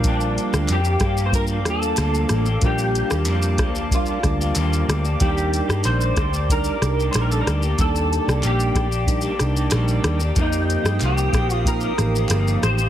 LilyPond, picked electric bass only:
\new Staff \with { instrumentName = "Picked electric bass" } { \clef bass \time 4/4 \key bes \major \tempo 4 = 93 bes,,8. d,16 f,8 g,4 ees,8 d,8 a,,8 | bes,,8. ees,16 f,8 d,4 d,8 ees,8 d,8 | ees,8. g,16 bes,,8 d,4 c,8 bes,,8 d,8 | ees,8. c,16 bes,,8 bes,,4 c,8 bes,,8 ees,8 |
f,8. g,16 c,8 bes,,4 a,,8 g,,8 a,,8 | }